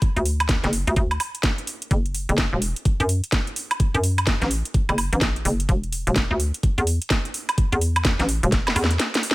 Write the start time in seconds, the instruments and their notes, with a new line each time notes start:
0.02 kick, closed hi-hat
0.16 fm bass D2, closed hi-hat
0.26 open hi-hat
0.40 closed hi-hat, high woodblock
0.49 kick, snare, closed hi-hat
0.63 fm bass F#1, snare, closed hi-hat
0.73 open hi-hat
0.87 fm bass D2, closed hi-hat
0.96 fm bass D2, kick, closed hi-hat
1.11 closed hi-hat, high woodblock
1.20 open hi-hat, high woodblock
1.35 closed hi-hat
1.43 kick, snare, closed hi-hat
1.58 closed hi-hat
1.67 open hi-hat
1.82 closed hi-hat
1.91 fm bass F#1, kick, closed hi-hat
2.06 closed hi-hat
2.15 open hi-hat
2.29 fm bass F#1, closed hi-hat
2.38 kick, snare, closed hi-hat
2.53 fm bass E1
2.62 open hi-hat
2.76 closed hi-hat
2.85 kick, closed hi-hat
3.00 fm bass F#2, closed hi-hat
3.09 open hi-hat
3.24 closed hi-hat
3.32 kick, snare, closed hi-hat
3.47 closed hi-hat
3.56 open hi-hat
3.71 closed hi-hat, high woodblock
3.80 kick, closed hi-hat
3.94 fm bass F#2, closed hi-hat
4.04 open hi-hat
4.18 closed hi-hat, high woodblock
4.27 kick, snare, closed hi-hat
4.41 fm bass A1, snare, closed hi-hat
4.51 open hi-hat
4.65 closed hi-hat
4.74 kick, closed hi-hat
4.89 fm bass F#1, closed hi-hat, high woodblock
4.98 open hi-hat, high woodblock
5.13 fm bass A1, closed hi-hat
5.21 kick, snare, closed hi-hat
5.36 closed hi-hat
5.45 fm bass F#1, open hi-hat
5.60 closed hi-hat
5.69 fm bass E1, kick, closed hi-hat
5.83 closed hi-hat
5.92 open hi-hat
6.07 fm bass E1, closed hi-hat
6.16 kick, snare, closed hi-hat
6.31 fm bass D2
6.40 open hi-hat
6.54 closed hi-hat
6.63 kick, closed hi-hat
6.78 fm bass E2, closed hi-hat
6.87 open hi-hat
7.02 closed hi-hat
7.10 kick, snare, closed hi-hat
7.25 closed hi-hat
7.34 open hi-hat
7.49 closed hi-hat, high woodblock
7.58 kick, closed hi-hat
7.72 fm bass E2, closed hi-hat
7.81 open hi-hat
7.96 closed hi-hat, high woodblock
8.05 kick, snare, closed hi-hat
8.19 fm bass A1, snare, closed hi-hat
8.29 open hi-hat
8.43 fm bass E1, closed hi-hat
8.52 kick, snare, closed hi-hat
8.67 snare, closed hi-hat, high woodblock
8.76 fm bass E2, open hi-hat, high woodblock
8.84 snare
8.91 closed hi-hat
9.00 snare, closed hi-hat
9.14 snare, closed hi-hat
9.23 open hi-hat
9.31 snare